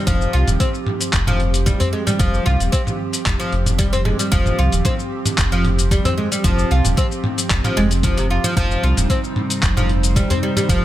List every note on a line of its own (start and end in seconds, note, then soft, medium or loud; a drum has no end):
0.07 0.28 F1 loud
0.07 0.32 F3 loud
0.07 8.53 F3 medium
0.07 10.85 C4 medium
0.07 8.53 G4 medium
0.07 kick loud
0.07 closed hi-hat medium
0.07 mid tom medium
0.07 shaker medium
0.21 shaker soft
0.33 0.45 C2 medium
0.33 0.47 F4 medium
0.33 closed hi-hat soft
0.48 0.57 D#1 medium
0.48 closed hi-hat soft
0.48 mid tom medium
0.48 shaker medium
0.60 0.68 C4 medium
0.60 kick loud
0.60 closed hi-hat medium
0.60 shaker medium
0.75 shaker soft
0.87 mid tom medium
1.01 closed hi-hat medium
1.01 shaker medium
1.13 1.75 F1 medium
1.13 kick loud
1.13 clap medium
1.13 closed hi-hat medium
1.13 shaker medium
1.27 1.39 F3 medium
1.27 mid tom medium
1.27 shaker soft
1.40 closed hi-hat soft
1.54 closed hi-hat soft
1.54 shaker medium
1.66 1.80 G3 medium
1.66 kick loud
1.66 closed hi-hat medium
1.66 mid tom medium
1.66 shaker medium
1.80 1.87 C4 medium
1.80 closed hi-hat medium
1.80 udu loud
1.80 shaker soft
1.93 2.06 G#3 medium
2.07 2.18 G3 medium
2.07 closed hi-hat soft
2.07 mid tom medium
2.07 shaker medium
2.19 2.40 F1 loud
2.19 2.45 F3 loud
2.19 kick loud
2.19 closed hi-hat medium
2.19 shaker medium
2.34 shaker soft
2.46 2.57 C2 medium
2.46 2.59 F4 medium
2.46 closed hi-hat soft
2.46 mid tom medium
2.60 2.70 D#1 medium
2.60 closed hi-hat soft
2.60 shaker medium
2.72 2.81 C4 medium
2.72 kick loud
2.72 closed hi-hat medium
2.72 shaker medium
2.87 mid tom medium
2.87 shaker soft
3.13 closed hi-hat soft
3.13 shaker medium
3.26 3.37 F1 loud
3.26 kick loud
3.26 clap medium
3.26 closed hi-hat medium
3.26 mid tom medium
3.26 shaker medium
3.40 3.52 F3 medium
3.40 shaker soft
3.52 4.14 F1 medium
3.52 closed hi-hat soft
3.66 closed hi-hat soft
3.66 mid tom medium
3.66 shaker medium
3.79 3.92 G3 medium
3.79 kick loud
3.79 closed hi-hat medium
3.79 shaker medium
3.93 4.00 C4 medium
3.93 closed hi-hat medium
3.93 udu medium
3.93 shaker soft
4.05 4.19 G#3 medium
4.05 mid tom medium
4.19 4.31 G3 medium
4.19 closed hi-hat soft
4.19 shaker medium
4.32 4.53 F1 medium
4.32 4.57 F3 loud
4.32 kick loud
4.32 closed hi-hat medium
4.32 shaker medium
4.46 mid tom medium
4.46 shaker soft
4.59 4.69 C2 medium
4.59 4.72 F4 medium
4.59 closed hi-hat soft
4.72 4.82 D#1 medium
4.72 closed hi-hat soft
4.72 shaker medium
4.85 4.93 C4 medium
4.85 kick loud
4.85 closed hi-hat medium
4.85 mid tom medium
4.85 shaker medium
4.99 shaker soft
5.26 closed hi-hat soft
5.26 mid tom medium
5.26 shaker medium
5.38 6.00 F1 medium
5.38 kick loud
5.38 clap medium
5.38 closed hi-hat medium
5.38 shaker medium
5.52 5.64 F3 medium
5.52 shaker soft
5.65 closed hi-hat soft
5.65 mid tom medium
5.79 closed hi-hat soft
5.79 shaker medium
5.91 6.05 G3 medium
5.91 kick loud
5.91 closed hi-hat medium
5.91 shaker medium
6.05 6.12 C4 medium
6.05 closed hi-hat medium
6.05 mid tom medium
6.05 udu medium
6.05 shaker soft
6.18 6.31 G#3 medium
6.32 6.43 G3 medium
6.32 closed hi-hat soft
6.32 shaker medium
6.44 6.65 F1 loud
6.44 6.70 F3 loud
6.44 kick loud
6.44 closed hi-hat medium
6.44 mid tom medium
6.44 shaker medium
6.59 shaker soft
6.71 6.82 C2 medium
6.71 6.84 F4 medium
6.71 closed hi-hat soft
6.85 6.95 D#1 medium
6.85 closed hi-hat soft
6.85 mid tom medium
6.85 shaker medium
6.97 7.06 C4 medium
6.97 kick loud
6.97 closed hi-hat medium
6.97 shaker medium
7.12 shaker soft
7.24 mid tom medium
7.38 closed hi-hat soft
7.38 shaker medium
7.50 7.61 F1 loud
7.50 kick loud
7.50 clap medium
7.50 closed hi-hat medium
7.50 shaker medium
7.64 7.77 F3 medium
7.64 mid tom medium
7.64 shaker soft
7.77 8.39 F1 medium
7.77 7.90 G#3 loud
7.77 closed hi-hat soft
7.91 closed hi-hat soft
7.91 shaker medium
8.03 8.16 F3 medium
8.03 kick loud
8.03 closed hi-hat medium
8.03 mid tom medium
8.03 shaker medium
8.17 8.25 C3 medium
8.17 closed hi-hat medium
8.17 udu medium
8.17 shaker soft
8.30 8.44 F4 medium
8.44 8.56 F3 loud
8.44 closed hi-hat soft
8.44 mid tom medium
8.44 shaker medium
8.57 8.77 F1 loud
8.57 10.85 C3 medium
8.57 8.82 F3 loud
8.57 10.85 G3 medium
8.57 10.85 D#4 medium
8.57 10.85 C5 medium
8.57 kick loud
8.57 closed hi-hat medium
8.57 mid tom medium
8.57 shaker medium
8.71 shaker soft
8.83 8.94 C2 medium
8.83 8.97 F4 medium
8.83 closed hi-hat soft
8.97 9.07 D#1 medium
8.97 closed hi-hat soft
8.97 mid tom medium
8.97 shaker medium
9.10 9.18 C4 medium
9.10 kick loud
9.10 closed hi-hat medium
9.10 shaker medium
9.24 shaker soft
9.36 mid tom medium
9.50 closed hi-hat soft
9.50 shaker medium
9.63 10.25 F1 medium
9.63 kick loud
9.63 clap medium
9.63 closed hi-hat medium
9.63 shaker medium
9.77 9.89 F3 medium
9.77 mid tom medium
9.77 shaker soft
9.89 closed hi-hat soft
10.03 closed hi-hat soft
10.03 shaker medium
10.16 10.30 G3 medium
10.16 kick loud
10.16 closed hi-hat medium
10.16 mid tom medium
10.16 shaker medium
10.30 10.37 C4 medium
10.30 closed hi-hat medium
10.30 udu loud
10.30 shaker soft
10.43 10.56 G3 medium
10.57 10.68 G3 medium
10.57 closed hi-hat soft
10.57 mid tom medium
10.57 shaker medium
10.69 10.85 F1 loud
10.69 10.85 F3 loud
10.69 kick loud
10.69 closed hi-hat medium
10.69 shaker medium